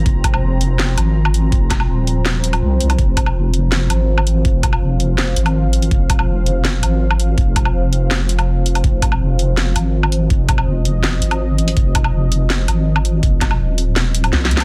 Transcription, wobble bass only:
X:1
M:4/4
L:1/8
Q:1/4=164
K:Fm
V:1 name="Wobble bass" clef=bass
F,,,2 F,,,3 A,,,3 | F,,,2 E,,,4 C,,2 | F,,,2 F,,,3 A,,,3 | F,,,2 F,,,3 A,,,3 |
F,,,2 F,,,3 A,,,3 | F,,,2 F,,,6 | F,,,2 F,,,3 A,,,3 | F,,,2 F,,,3 A,,,3 |
F,,,2 F,,,3 A,,,3 | F,,,2 E,,,4 C,,2 |]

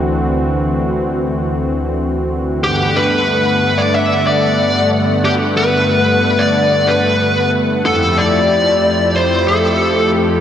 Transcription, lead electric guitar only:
X:1
M:4/4
L:1/16
Q:1/4=92
K:G
V:1 name="Lead electric guitar"
z16 | G2 B4- B d e2 d4 z2 | G2 B4- B d3 B4 z2 | A2 d6 c2 A4 z2 |]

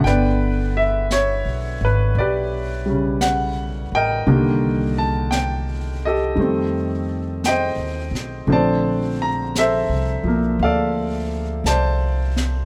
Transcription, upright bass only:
X:1
M:4/4
L:1/8
Q:"Swing" 1/4=57
K:Gdor
V:1 name="Upright bass" clef=bass
G,,,2- (3G,,, =B,,, ^G,,, B,,,3 A,,, | C,,4 F,,2- (3F,, _E,, =B,,, | B,,,2- (3B,,, C,, =B,,, D,,2 C,,2 |]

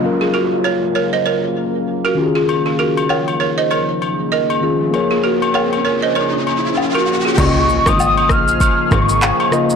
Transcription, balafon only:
X:1
M:4/4
L:1/16
Q:"Swing 16ths" 1/4=98
K:Db
V:1 name="Balafon"
z [FA] [GB] z [Bd] z [Bd] [ce] [Bd]2 z3 [GB] z [FA] | z [FA] [GB] z [Bd] z [Bd] [ce] [Bd]2 z2 [Be]2 z2 | z [FA] [GB] z [Bd] z [Bd] [ce] [Bd]2 z3 [GB] z [FA] | z16 |]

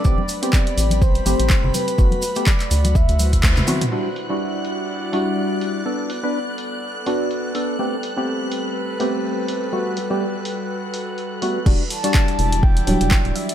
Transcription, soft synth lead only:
X:1
M:4/4
L:1/8
Q:"Swing 16ths" 1/4=124
K:Em
V:1 name="Soft synth lead"
d2 d2 c3 B- | B2 d2 e3 z | z8 | z8 |
z8 | z8 | z a3 g3 e |]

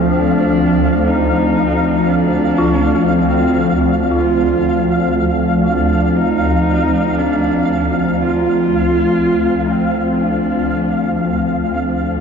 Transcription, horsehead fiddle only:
X:1
M:4/4
L:1/16
Q:1/4=59
K:Dm
V:1 name="Horsehead fiddle"
D4 _E4 D4 C3 z | F4 z2 D2 _E4 D3 z | F6 C2 D4 z4 |]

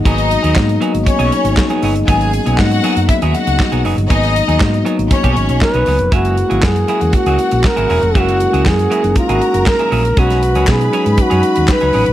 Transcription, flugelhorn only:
X:1
M:4/4
L:1/8
Q:1/4=119
K:F#mix
V:1 name="Flugelhorn"
z8 | z8 | z6 B2 | F2 G2 F2 A2 |
F2 G2 F2 A2 | F2 G2 F2 B2 |]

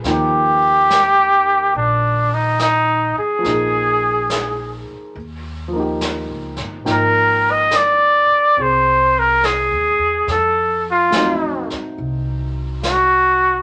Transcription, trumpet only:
X:1
M:4/4
L:1/8
Q:"Swing" 1/4=70
K:Eblyd
V:1 name="Trumpet"
G4 D E E _A- | _A3 z4 z | B e d2 c B _A2 | A F2 z3 _G2 |]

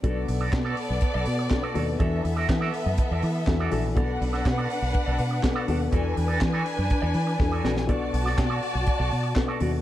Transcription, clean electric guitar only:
X:1
M:4/4
L:1/16
Q:1/4=122
K:Bdor
V:1 name="Clean electric guitar"
[FAd]2 z [FAd] z [FAd] z3 [FAd] z3 [FAd] [FAd] z | [FAd]2 z [FAd] z [FAd] z3 [FAd] z3 [FAd] [FAd] z | [FAd]2 z [FAd] z [FAd] z3 [FAd] z3 [FAd] [FAd] z | [FAd]2 z [FAd] z [FAd] z3 [FAd] z3 [FAd] [FAd] z |
[FAd]2 z [FAd] z [FAd] z3 [FAd] z3 [FAd] [FAd] z |]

